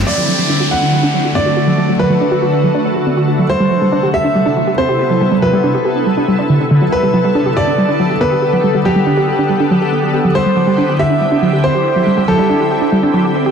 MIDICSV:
0, 0, Header, 1, 4, 480
1, 0, Start_track
1, 0, Tempo, 428571
1, 75, Time_signature, 4, 2, 24, 8
1, 15135, End_track
2, 0, Start_track
2, 0, Title_t, "Grand piano"
2, 0, Program_c, 0, 0
2, 74, Note_on_c, 0, 74, 95
2, 698, Note_off_c, 0, 74, 0
2, 796, Note_on_c, 0, 78, 85
2, 1419, Note_off_c, 0, 78, 0
2, 1514, Note_on_c, 0, 74, 87
2, 2138, Note_off_c, 0, 74, 0
2, 2234, Note_on_c, 0, 71, 85
2, 3818, Note_off_c, 0, 71, 0
2, 3915, Note_on_c, 0, 72, 93
2, 4539, Note_off_c, 0, 72, 0
2, 4634, Note_on_c, 0, 76, 87
2, 5258, Note_off_c, 0, 76, 0
2, 5353, Note_on_c, 0, 72, 88
2, 5978, Note_off_c, 0, 72, 0
2, 6074, Note_on_c, 0, 71, 87
2, 7658, Note_off_c, 0, 71, 0
2, 7755, Note_on_c, 0, 71, 93
2, 8379, Note_off_c, 0, 71, 0
2, 8474, Note_on_c, 0, 74, 85
2, 9098, Note_off_c, 0, 74, 0
2, 9194, Note_on_c, 0, 71, 87
2, 9818, Note_off_c, 0, 71, 0
2, 9915, Note_on_c, 0, 67, 88
2, 11499, Note_off_c, 0, 67, 0
2, 11593, Note_on_c, 0, 72, 91
2, 12218, Note_off_c, 0, 72, 0
2, 12313, Note_on_c, 0, 76, 87
2, 12938, Note_off_c, 0, 76, 0
2, 13034, Note_on_c, 0, 72, 90
2, 13658, Note_off_c, 0, 72, 0
2, 13754, Note_on_c, 0, 69, 88
2, 15135, Note_off_c, 0, 69, 0
2, 15135, End_track
3, 0, Start_track
3, 0, Title_t, "Synth pluck"
3, 0, Program_c, 1, 84
3, 75, Note_on_c, 1, 54, 83
3, 143, Note_off_c, 1, 54, 0
3, 195, Note_on_c, 1, 54, 99
3, 236, Note_off_c, 1, 54, 0
3, 315, Note_on_c, 1, 54, 96
3, 355, Note_off_c, 1, 54, 0
3, 435, Note_on_c, 1, 54, 100
3, 503, Note_off_c, 1, 54, 0
3, 555, Note_on_c, 1, 62, 101
3, 595, Note_off_c, 1, 62, 0
3, 675, Note_on_c, 1, 66, 97
3, 742, Note_off_c, 1, 66, 0
3, 795, Note_on_c, 1, 66, 75
3, 897, Note_off_c, 1, 66, 0
3, 915, Note_on_c, 1, 62, 74
3, 1016, Note_off_c, 1, 62, 0
3, 1035, Note_on_c, 1, 54, 80
3, 1103, Note_off_c, 1, 54, 0
3, 1155, Note_on_c, 1, 62, 101
3, 1222, Note_off_c, 1, 62, 0
3, 1275, Note_on_c, 1, 54, 98
3, 1315, Note_off_c, 1, 54, 0
3, 1395, Note_on_c, 1, 66, 77
3, 1496, Note_off_c, 1, 66, 0
3, 1515, Note_on_c, 1, 60, 77
3, 1616, Note_off_c, 1, 60, 0
3, 1635, Note_on_c, 1, 66, 93
3, 1702, Note_off_c, 1, 66, 0
3, 1755, Note_on_c, 1, 66, 72
3, 1857, Note_off_c, 1, 66, 0
3, 1874, Note_on_c, 1, 54, 72
3, 1976, Note_off_c, 1, 54, 0
3, 1995, Note_on_c, 1, 54, 81
3, 2062, Note_off_c, 1, 54, 0
3, 2114, Note_on_c, 1, 54, 97
3, 2155, Note_off_c, 1, 54, 0
3, 2235, Note_on_c, 1, 54, 99
3, 2276, Note_off_c, 1, 54, 0
3, 2354, Note_on_c, 1, 54, 103
3, 2422, Note_off_c, 1, 54, 0
3, 2474, Note_on_c, 1, 62, 99
3, 2515, Note_off_c, 1, 62, 0
3, 2593, Note_on_c, 1, 66, 98
3, 2662, Note_off_c, 1, 66, 0
3, 2713, Note_on_c, 1, 66, 77
3, 2816, Note_off_c, 1, 66, 0
3, 2834, Note_on_c, 1, 62, 72
3, 2936, Note_off_c, 1, 62, 0
3, 2953, Note_on_c, 1, 54, 79
3, 3022, Note_off_c, 1, 54, 0
3, 3073, Note_on_c, 1, 62, 103
3, 3142, Note_off_c, 1, 62, 0
3, 3193, Note_on_c, 1, 54, 102
3, 3235, Note_off_c, 1, 54, 0
3, 3313, Note_on_c, 1, 66, 74
3, 3416, Note_off_c, 1, 66, 0
3, 3433, Note_on_c, 1, 60, 77
3, 3536, Note_off_c, 1, 60, 0
3, 3553, Note_on_c, 1, 66, 93
3, 3622, Note_off_c, 1, 66, 0
3, 3674, Note_on_c, 1, 66, 74
3, 3776, Note_off_c, 1, 66, 0
3, 3794, Note_on_c, 1, 54, 71
3, 3896, Note_off_c, 1, 54, 0
3, 3914, Note_on_c, 1, 55, 84
3, 3982, Note_off_c, 1, 55, 0
3, 4034, Note_on_c, 1, 55, 98
3, 4075, Note_off_c, 1, 55, 0
3, 4154, Note_on_c, 1, 54, 99
3, 4195, Note_off_c, 1, 54, 0
3, 4274, Note_on_c, 1, 55, 102
3, 4342, Note_off_c, 1, 55, 0
3, 4394, Note_on_c, 1, 62, 98
3, 4435, Note_off_c, 1, 62, 0
3, 4514, Note_on_c, 1, 67, 99
3, 4582, Note_off_c, 1, 67, 0
3, 4633, Note_on_c, 1, 67, 75
3, 4736, Note_off_c, 1, 67, 0
3, 4754, Note_on_c, 1, 62, 77
3, 4856, Note_off_c, 1, 62, 0
3, 4873, Note_on_c, 1, 55, 81
3, 4942, Note_off_c, 1, 55, 0
3, 4994, Note_on_c, 1, 62, 100
3, 5062, Note_off_c, 1, 62, 0
3, 5113, Note_on_c, 1, 54, 98
3, 5154, Note_off_c, 1, 54, 0
3, 5234, Note_on_c, 1, 67, 75
3, 5336, Note_off_c, 1, 67, 0
3, 5354, Note_on_c, 1, 60, 80
3, 5456, Note_off_c, 1, 60, 0
3, 5474, Note_on_c, 1, 67, 94
3, 5542, Note_off_c, 1, 67, 0
3, 5593, Note_on_c, 1, 67, 74
3, 5696, Note_off_c, 1, 67, 0
3, 5714, Note_on_c, 1, 54, 73
3, 5816, Note_off_c, 1, 54, 0
3, 5834, Note_on_c, 1, 55, 85
3, 5902, Note_off_c, 1, 55, 0
3, 5954, Note_on_c, 1, 55, 96
3, 5995, Note_off_c, 1, 55, 0
3, 6074, Note_on_c, 1, 54, 95
3, 6115, Note_off_c, 1, 54, 0
3, 6194, Note_on_c, 1, 55, 101
3, 6262, Note_off_c, 1, 55, 0
3, 6313, Note_on_c, 1, 62, 98
3, 6355, Note_off_c, 1, 62, 0
3, 6435, Note_on_c, 1, 67, 95
3, 6502, Note_off_c, 1, 67, 0
3, 6554, Note_on_c, 1, 67, 78
3, 6656, Note_off_c, 1, 67, 0
3, 6674, Note_on_c, 1, 62, 74
3, 6776, Note_off_c, 1, 62, 0
3, 6794, Note_on_c, 1, 55, 81
3, 6862, Note_off_c, 1, 55, 0
3, 6914, Note_on_c, 1, 62, 101
3, 6982, Note_off_c, 1, 62, 0
3, 7034, Note_on_c, 1, 55, 98
3, 7102, Note_off_c, 1, 55, 0
3, 7154, Note_on_c, 1, 62, 97
3, 7195, Note_off_c, 1, 62, 0
3, 7274, Note_on_c, 1, 50, 79
3, 7342, Note_off_c, 1, 50, 0
3, 7394, Note_on_c, 1, 62, 68
3, 7462, Note_off_c, 1, 62, 0
3, 7514, Note_on_c, 1, 50, 100
3, 7555, Note_off_c, 1, 50, 0
3, 7634, Note_on_c, 1, 54, 95
3, 7702, Note_off_c, 1, 54, 0
3, 7754, Note_on_c, 1, 55, 84
3, 7822, Note_off_c, 1, 55, 0
3, 7873, Note_on_c, 1, 55, 97
3, 7915, Note_off_c, 1, 55, 0
3, 7994, Note_on_c, 1, 54, 97
3, 8035, Note_off_c, 1, 54, 0
3, 8113, Note_on_c, 1, 55, 101
3, 8182, Note_off_c, 1, 55, 0
3, 8233, Note_on_c, 1, 62, 98
3, 8274, Note_off_c, 1, 62, 0
3, 8353, Note_on_c, 1, 67, 94
3, 8422, Note_off_c, 1, 67, 0
3, 8474, Note_on_c, 1, 67, 77
3, 8576, Note_off_c, 1, 67, 0
3, 8594, Note_on_c, 1, 62, 73
3, 8696, Note_off_c, 1, 62, 0
3, 8714, Note_on_c, 1, 55, 82
3, 8782, Note_off_c, 1, 55, 0
3, 8833, Note_on_c, 1, 62, 100
3, 8902, Note_off_c, 1, 62, 0
3, 8954, Note_on_c, 1, 54, 99
3, 8995, Note_off_c, 1, 54, 0
3, 9074, Note_on_c, 1, 67, 73
3, 9176, Note_off_c, 1, 67, 0
3, 9194, Note_on_c, 1, 59, 78
3, 9296, Note_off_c, 1, 59, 0
3, 9314, Note_on_c, 1, 67, 94
3, 9382, Note_off_c, 1, 67, 0
3, 9434, Note_on_c, 1, 67, 76
3, 9536, Note_off_c, 1, 67, 0
3, 9554, Note_on_c, 1, 54, 74
3, 9656, Note_off_c, 1, 54, 0
3, 9674, Note_on_c, 1, 55, 83
3, 9742, Note_off_c, 1, 55, 0
3, 9794, Note_on_c, 1, 55, 101
3, 9835, Note_off_c, 1, 55, 0
3, 9914, Note_on_c, 1, 54, 101
3, 9955, Note_off_c, 1, 54, 0
3, 10034, Note_on_c, 1, 55, 101
3, 10102, Note_off_c, 1, 55, 0
3, 10154, Note_on_c, 1, 62, 96
3, 10195, Note_off_c, 1, 62, 0
3, 10274, Note_on_c, 1, 67, 99
3, 10342, Note_off_c, 1, 67, 0
3, 10394, Note_on_c, 1, 67, 80
3, 10496, Note_off_c, 1, 67, 0
3, 10514, Note_on_c, 1, 62, 76
3, 10616, Note_off_c, 1, 62, 0
3, 10634, Note_on_c, 1, 55, 81
3, 10702, Note_off_c, 1, 55, 0
3, 10754, Note_on_c, 1, 62, 99
3, 10822, Note_off_c, 1, 62, 0
3, 10874, Note_on_c, 1, 54, 103
3, 10915, Note_off_c, 1, 54, 0
3, 10993, Note_on_c, 1, 67, 73
3, 11096, Note_off_c, 1, 67, 0
3, 11113, Note_on_c, 1, 59, 79
3, 11216, Note_off_c, 1, 59, 0
3, 11233, Note_on_c, 1, 67, 95
3, 11302, Note_off_c, 1, 67, 0
3, 11353, Note_on_c, 1, 67, 74
3, 11456, Note_off_c, 1, 67, 0
3, 11473, Note_on_c, 1, 54, 71
3, 11576, Note_off_c, 1, 54, 0
3, 11593, Note_on_c, 1, 55, 81
3, 11662, Note_off_c, 1, 55, 0
3, 11713, Note_on_c, 1, 55, 95
3, 11755, Note_off_c, 1, 55, 0
3, 11833, Note_on_c, 1, 54, 101
3, 11875, Note_off_c, 1, 54, 0
3, 11953, Note_on_c, 1, 55, 101
3, 12022, Note_off_c, 1, 55, 0
3, 12073, Note_on_c, 1, 62, 98
3, 12114, Note_off_c, 1, 62, 0
3, 12193, Note_on_c, 1, 67, 97
3, 12262, Note_off_c, 1, 67, 0
3, 12313, Note_on_c, 1, 67, 78
3, 12416, Note_off_c, 1, 67, 0
3, 12434, Note_on_c, 1, 62, 73
3, 12536, Note_off_c, 1, 62, 0
3, 12554, Note_on_c, 1, 55, 83
3, 12622, Note_off_c, 1, 55, 0
3, 12673, Note_on_c, 1, 62, 101
3, 12742, Note_off_c, 1, 62, 0
3, 12794, Note_on_c, 1, 54, 103
3, 12835, Note_off_c, 1, 54, 0
3, 12914, Note_on_c, 1, 67, 74
3, 13016, Note_off_c, 1, 67, 0
3, 13034, Note_on_c, 1, 60, 80
3, 13136, Note_off_c, 1, 60, 0
3, 13154, Note_on_c, 1, 67, 94
3, 13222, Note_off_c, 1, 67, 0
3, 13274, Note_on_c, 1, 67, 73
3, 13376, Note_off_c, 1, 67, 0
3, 13394, Note_on_c, 1, 54, 72
3, 13496, Note_off_c, 1, 54, 0
3, 13514, Note_on_c, 1, 55, 83
3, 13582, Note_off_c, 1, 55, 0
3, 13634, Note_on_c, 1, 55, 96
3, 13675, Note_off_c, 1, 55, 0
3, 13755, Note_on_c, 1, 54, 96
3, 13795, Note_off_c, 1, 54, 0
3, 13874, Note_on_c, 1, 55, 101
3, 13942, Note_off_c, 1, 55, 0
3, 13994, Note_on_c, 1, 62, 97
3, 14035, Note_off_c, 1, 62, 0
3, 14114, Note_on_c, 1, 67, 98
3, 14182, Note_off_c, 1, 67, 0
3, 14234, Note_on_c, 1, 67, 78
3, 14336, Note_off_c, 1, 67, 0
3, 14354, Note_on_c, 1, 62, 75
3, 14456, Note_off_c, 1, 62, 0
3, 14474, Note_on_c, 1, 55, 82
3, 14542, Note_off_c, 1, 55, 0
3, 14594, Note_on_c, 1, 62, 101
3, 14662, Note_off_c, 1, 62, 0
3, 14714, Note_on_c, 1, 54, 101
3, 14755, Note_off_c, 1, 54, 0
3, 14834, Note_on_c, 1, 67, 72
3, 14936, Note_off_c, 1, 67, 0
3, 14955, Note_on_c, 1, 60, 79
3, 15056, Note_off_c, 1, 60, 0
3, 15075, Note_on_c, 1, 67, 92
3, 15135, Note_off_c, 1, 67, 0
3, 15135, End_track
4, 0, Start_track
4, 0, Title_t, "Downlifter"
4, 0, Program_c, 2, 103
4, 75, Note_on_c, 2, 60, 64
4, 3915, Note_off_c, 2, 60, 0
4, 15135, End_track
0, 0, End_of_file